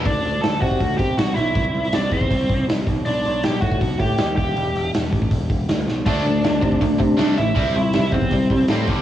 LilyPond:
<<
  \new Staff \with { instrumentName = "Lead electric guitar" } { \time 4/4 \key d \mixolydian \tempo 4 = 160 <d' d''>4 <a' a''>8 <fis' fis''>4 <g' g''>8 <fis' fis''>8 <e' e''>8~ | <e' e''>4 <d' d''>8 <c' c''>4. r4 | <d' d''>4 <g' g''>8 <fis' fis''>4 <g' g''>4 <g' g''>8~ | <g' g''>4 r2. |
<d' d''>2.~ <d' d''>8 <e' e''>8~ | <e' e''>4. <c' c''>4. r4 | }
  \new Staff \with { instrumentName = "Overdriven electric guitar" } { \clef bass \time 4/4 \key d \mixolydian r1 | r1 | r1 | r1 |
<d a d'>8 <d a>8 <d a>8 <d a>8 <d a>8 <d a>8 <d a d'>8 <d a>8 | <c g c'>8 <c g>8 <c g>8 <c g>8 <c g>8 <c g>8 <c g c'>8 <g, d g>8 | }
  \new Staff \with { instrumentName = "Picked electric bass" } { \clef bass \time 4/4 \key d \mixolydian d,8 d,8 d,8 c8 d,8 c8 c,8 b,,8 | c,8 c,8 c,8 e,8 c,8 c,8 c,8 b,,8 | b,,8 b,,8 b,,8 a,8 b,,8 a,8 dis,8 e,,8 | e,,8 e,,8 e,,8 a,,8 e,,8 e,,8 d,8 b,,8 |
d,8 d,8 d,8 c8 d,8 c8 c,8 a,,8 | c,8 c,8 c,8 e,8 c,8 c,8 a,8 b,,8 | }
  \new DrumStaff \with { instrumentName = "Drums" } \drummode { \time 4/4 <hho bd>8 hho8 <hho sn>8 <hho bd>16 bd16 <hho bd>8 <hho bd>8 <hho sn>8 hho8 | <hho bd>8 hho8 <hho sn>8 <hho bd>16 bd16 <hho bd>8 <hho bd>8 <hho sn>8 <hho bd>8 | hho8 hho8 <hho sn>8 <hho bd>16 bd16 <hho bd>8 <hho bd>8 <hho sn>8 <hho bd>8 | hho8 hho8 <hho sn>8 <hho bd>16 bd16 <hho bd>8 <hho bd>8 <hho sn>8 sn8 |
<cymc hho bd>8 hho8 <hho sn>8 <hho bd>16 bd16 <hho bd>8 <hho bd>8 <hho sn>8 hho8 | <hho bd>8 hho8 <hho sn>8 <hho bd>16 bd16 <hho bd>8 <hho bd>8 <hho sn>8 <hho bd>8 | }
>>